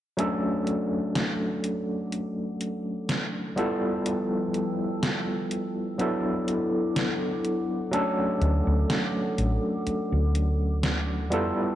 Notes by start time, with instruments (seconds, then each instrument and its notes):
0.17 tine electric piano F#3 A3 C#4 D4 A4, ambient pad A4 F#5 D6, closed hi-hat
0.67 closed hi-hat
1.15 snare, closed hi-hat
1.64 closed hi-hat
2.12 closed hi-hat
2.61 closed hi-hat
3.09 snare, closed hi-hat
3.56 ambient pad F3 B4 G5 A5 E6, tine electric piano G3 B3 E4 F4 A4, closed hi-hat
4.06 closed hi-hat
4.54 closed hi-hat
5.03 snare, closed hi-hat
5.51 closed hi-hat
5.98 tine electric piano F#3 B3 D4 E4 A4, ambient pad E4 A4 F#5 D6, closed hi-hat
6.48 closed hi-hat
6.96 snare, closed hi-hat
7.45 closed hi-hat
7.91 tine electric piano F#3 A3 C#4 D4 A4, ambient pad A4 D6, closed hi-hat
8.41 fretless electric bass D2, closed hi-hat
8.67 fretless electric bass D2
8.90 snare, closed hi-hat
9.38 fretless electric bass A1, closed hi-hat
9.87 muted fretless electric bass stroke, closed hi-hat
10.12 fretless electric bass D2
10.35 closed hi-hat
10.83 snare, closed hi-hat
11.30 fretless electric bass F2, tine electric piano G3 B3 E4 F4 A4, ambient pad B4 G5 A5 E6, closed hi-hat